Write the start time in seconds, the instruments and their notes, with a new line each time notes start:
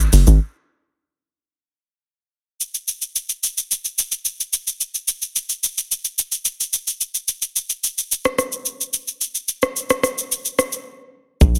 0.00 shaker
0.13 log drum bass F#1, open hi-hat, shaker
0.27 log drum bass G#1, shaker
2.61 shaker
2.75 shaker
2.88 shaker
3.02 shaker
3.16 shaker
3.29 shaker
3.44 shaker
3.58 shaker
3.71 shaker
3.85 shaker
3.99 shaker
4.12 shaker
4.25 shaker
4.40 shaker
4.53 shaker
4.67 shaker
4.81 shaker
4.95 shaker
5.08 shaker
5.22 shaker
5.36 shaker
5.49 shaker
5.64 shaker
5.78 shaker
5.92 shaker
6.05 shaker
6.19 shaker
6.32 shaker
6.45 shaker
6.60 shaker
6.73 shaker
6.87 shaker
7.01 shaker
7.15 shaker
7.28 shaker
7.42 shaker
7.56 shaker
7.70 shaker
7.84 shaker
7.98 shaker
8.12 shaker
8.25 cross-stick, shaker
8.39 cross-stick, shaker
8.52 shaker
8.66 shaker
8.81 shaker
8.94 shaker
9.08 shaker
9.21 shaker
9.35 shaker
9.48 shaker
9.62 cross-stick, shaker
9.76 shaker
9.90 cross-stick, shaker
10.03 cross-stick, shaker
10.18 shaker
10.32 shaker
10.45 shaker
10.59 cross-stick, shaker
10.72 shaker
11.41 log drum bass A#1, kick, shaker
11.55 shaker